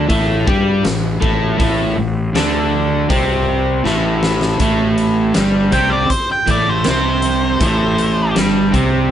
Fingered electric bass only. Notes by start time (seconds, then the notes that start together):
0.10 A1
0.47 G2
0.86 A1
1.23 A1
1.59 A1
1.97 A1
2.33 D2
3.10 C2
3.86 A1
4.60 A1
5.36 G1
5.73 C2
6.10 muted fingered electric bass stroke
6.47 A1
6.87 C2
7.61 A1
8.36 G1
8.74 C2